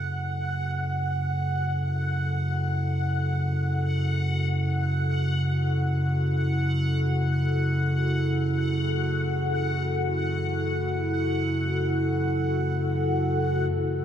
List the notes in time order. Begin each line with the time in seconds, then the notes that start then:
Already playing: F#2 C#3 E4 F#4 A4 F#5
13.71 F#2 C#3 F#5